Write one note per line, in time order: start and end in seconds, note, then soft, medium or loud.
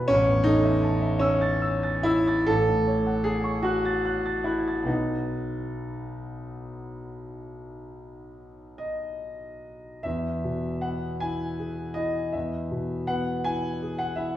0.00 0.12 B2 medium
0.00 0.12 B4 medium
0.00 0.12 E5 medium
0.00 0.12 B5 medium
0.08 2.44 A1 medium
0.08 0.45 C#4 loud
0.28 0.57 E2 medium
0.44 1.20 D#4 loud
0.44 0.76 A4 medium
0.64 0.94 E5 medium
0.83 1.13 A5 medium
1.01 1.33 E5 medium
1.19 2.05 C#4 loud
1.19 1.53 E6 medium
1.41 1.75 A6 medium
1.62 1.97 E6 medium
1.83 2.19 A6 medium
2.03 2.47 E4 loud
2.03 2.40 E6 medium
2.27 2.48 A6 medium
2.46 4.84 A1 medium
2.46 3.25 A4 loud
2.68 2.99 A2 medium
2.87 3.18 C#5 medium
3.06 3.37 F#5 medium
3.24 3.64 G#4 loud
3.24 3.57 A5 medium
3.44 3.76 C#6 medium
3.63 4.45 F#4 loud
3.63 3.97 F#6 medium
3.85 4.18 A6 medium
4.05 4.38 F#6 medium
4.26 4.59 A6 medium
4.44 4.87 E4 medium
4.44 4.80 F#6 medium
4.68 4.89 A6 soft
4.84 9.98 B1 medium
4.84 8.79 D#4 medium
4.84 9.99 B4 soft
4.84 10.00 F#5 soft
8.78 10.04 D#5 medium
10.03 12.30 E2 medium
10.03 10.83 E5 medium
10.44 11.07 B2 soft
10.81 11.44 B3 soft
10.81 11.21 F#5 medium
11.20 11.82 E4 soft
11.20 11.96 G#5 medium
11.59 12.19 G#4 soft
11.94 12.56 E4 soft
11.94 12.33 D#5 medium
12.32 14.37 E2 medium
12.32 13.08 E5 medium
12.71 13.31 B2 soft
13.07 13.68 B3 medium
13.07 13.45 F#5 medium
13.44 14.04 E4 medium
13.44 13.99 G#5 medium
13.82 14.37 G#4 medium
13.98 14.17 F#5 medium
14.16 14.37 E4 soft
14.16 14.35 E5 medium